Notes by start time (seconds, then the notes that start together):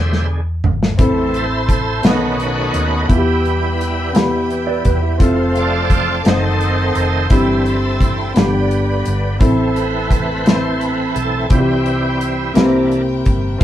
Already playing: E2 B2 D3 G#3 G4 C5 E5
0.13 snare
0.64 G#1, floor tom
0.83 snare
0.98 A1 A2 E3 A3 C4 E4 A4 C5 E5 A5 C6, kick, closed hi-hat
1.34 E4 A4 C5, closed hi-hat
1.69 kick, closed hi-hat
2.02 B1 B2 D#3 A3 B3 C#4 D#4 F#4 B4 D#5 F#5 B5, snare, closed hi-hat
2.10 D#4
2.40 closed hi-hat
2.74 D#2, closed hi-hat
3.08 E2 E3 G3 B3 E4 F4 G4 B4 E5 G5, kick, closed hi-hat
3.17 G4
3.46 closed hi-hat
3.81 closed hi-hat
4.13 B3 E4 G4, snare, closed hi-hat
4.50 closed hi-hat
4.67 B4 D5
4.85 E2 G4 B4, kick, closed hi-hat
5.01 E4 G4
5.18 F1 F3 A3 C4 F4 A4 C5 F5 A5 C6, kick, closed hi-hat
5.55 F4 A4 D5, closed hi-hat
5.90 kick, closed hi-hat
6.20 A3 C4 D5
6.25 F#1 D#3 A3 C4 D#4 F#4 A4 C5 D#5 F#5 A5, snare, closed hi-hat
6.61 closed hi-hat
6.95 F1, closed hi-hat
7.29 G1 G2 E3 G3 C4 E4 G4 A4 C5 E5 G5 C6, kick, closed hi-hat
7.66 closed hi-hat
8.01 kick, closed hi-hat
8.34 G1 G2 D3 G3 B3 D4 G4 B4 D5 B5, snare, closed hi-hat
8.71 closed hi-hat
9.05 G1, closed hi-hat
9.39 A1 A2 E3 A3 C4 E4 A4 E5 A5, kick, closed hi-hat
9.74 B4, closed hi-hat
10.10 B4, kick, closed hi-hat
10.44 C4 E4 B4 C5, snare, closed hi-hat
10.54 C5
10.73 C5
10.80 B4, closed hi-hat
11.15 B1 A4, closed hi-hat
11.49 C2 C3 E3 G3 C4 E4 F4 G4 G5, kick, closed hi-hat
11.59 G4
11.86 closed hi-hat
12.21 closed hi-hat
12.54 C2 C3 E3 A#3 C4 D4 E4 G4 A#4 B4 G5, snare, closed hi-hat
12.64 C5
12.92 closed hi-hat
13.26 G1, kick, closed hi-hat
13.58 F3 A3 C4 F4, closed hi-hat